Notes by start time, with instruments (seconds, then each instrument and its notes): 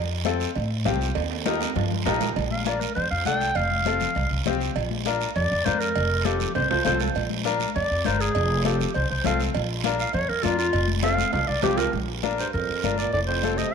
Already playing: upright bass F2
0.25 upright piano C4 F4 A4, cowbell, high conga, short guiro
0.40 short guiro
0.55 upright bass A2, cowbell, high conga, long guiro
0.85 upright bass C2, upright piano C4 F4 G4, cowbell, high conga, low timbale, short guiro
1.01 short guiro
1.15 upright bass D#2, cowbell, high conga, high timbale, long guiro
1.31 high timbale
1.46 upright piano D#4 G4 A#4, cowbell, high conga, low timbale, short guiro
1.61 high timbale, short guiro
1.76 upright bass G2, cowbell, low conga, low timbale, long guiro
1.91 low conga
2.05 upright bass A#1, upright piano D#4 G4 A#4, cowbell, low timbale, short guiro
2.21 low conga, low timbale, short guiro
2.36 upright bass A#1, cowbell, high conga, long guiro
2.51 clarinet F5, high conga
2.66 upright piano D4 F4 A#4, clarinet D5, cowbell, high conga, short guiro
2.80 clarinet A#4, high conga, short guiro
2.95 upright bass F2, clarinet C5, cowbell, high conga, long guiro
3.11 upright bass F2, clarinet F5
3.25 upright bass C2, upright piano D4 F4 A4, clarinet G5, cowbell, high conga, short guiro
3.41 short guiro
3.55 upright bass F1, clarinet F5, cowbell, high conga, long guiro
3.71 high conga
3.85 upright piano C4 F4 A4, cowbell, high conga, short guiro
4.00 low conga, short guiro
4.15 upright bass C2, cowbell, high conga, long guiro
4.31 upright bass C2
4.45 upright bass C2, upright piano C4 F4 G4, cowbell, high conga, low conga, short guiro
4.61 short guiro
4.76 upright bass A#1, cowbell, high conga, long guiro
4.91 high conga
5.05 upright piano D4 F4 A#4, cowbell, high conga, short guiro
5.21 short guiro
5.36 upright bass F2, clarinet D5, cowbell, high conga, long guiro
5.51 upright bass F2
5.65 upright bass F2, upright piano D4 F4 A#4, clarinet C5, cowbell, high conga, short guiro
5.80 clarinet A#4, short guiro
5.95 upright bass F1, cowbell, high conga, long guiro
6.25 upright piano C4 F4 A4, clarinet G4, cowbell, high conga, short guiro
6.40 low conga, short guiro
6.55 upright bass C2, clarinet C5, cowbell, high timbale, long guiro
6.70 upright bass C2, clarinet C5, low timbale
6.85 upright bass C2, upright piano C4 F4 A4, clarinet C5, cowbell, high conga, low conga, low timbale, short guiro
7.00 low timbale, short guiro
7.15 upright bass A#1, cowbell, high conga, long guiro
7.30 high conga
7.45 upright piano D4 F4 A#4, cowbell, high conga, short guiro
7.60 high conga, short guiro
7.75 upright bass F2, clarinet D5, cowbell, high conga, long guiro
7.91 upright bass F2
8.05 upright bass G1, upright piano D4 F4 A#4, clarinet C5, cowbell, high conga, short guiro
8.20 clarinet G#4, short guiro
8.35 upright bass F1, cowbell, long guiro
8.65 upright piano C4 F4 A4, clarinet G4, cowbell, high conga, short guiro
8.80 low conga, short guiro
8.94 upright bass C2, clarinet C5, cowbell, high conga, long guiro
9.10 upright bass C2, clarinet C5
9.24 upright bass C2, upright piano C4 F4 A4, clarinet F5, cowbell, high conga, low conga, low timbale, short guiro
9.40 short guiro
9.54 upright bass A#1, cowbell, high conga, long guiro
9.84 upright piano D4 F4 A#4, cowbell, high conga, short guiro
9.99 clarinet F5, short guiro
10.13 upright bass F2, clarinet C#5, cowbell, high conga, long guiro
10.29 upright bass F2, clarinet A#4
10.43 upright bass F2, upright piano D4 F4 A#4, clarinet F4, cowbell, high conga, short guiro
10.58 clarinet F4, short guiro
10.73 upright bass F1, cowbell, long guiro
10.88 high conga
11.03 upright piano C4 F4 A4, clarinet F5, cowbell, high conga, high timbale, short guiro
11.18 high conga, short guiro
11.33 upright bass C2, clarinet F5, cowbell, high conga, low timbale, long guiro
11.48 upright bass C2, clarinet D5
11.63 upright bass C2, upright piano C4 F4 G4, clarinet G4, cowbell, high conga, low conga, low timbale, short guiro
11.77 clarinet A#4, low timbale, short guiro
11.93 upright bass A#1, high conga, long guiro
12.23 upright piano D4 F4 A#4, high conga, short guiro
12.38 trombone G2, clarinet C5, short guiro
12.53 upright bass F2, trombone F2, clarinet A#4, high conga, long guiro
12.69 upright bass F2
12.83 upright bass G1, upright piano D4 F4 A#4, high conga, short guiro
12.98 trombone A#2, clarinet D5, short guiro
13.13 upright bass F1, trombone A2, clarinet D5, high conga, long guiro
13.27 trombone F2, clarinet C5
13.43 upright piano C4 F4 A4, high conga, short guiro
13.57 trombone C3, clarinet D#5, high conga, short guiro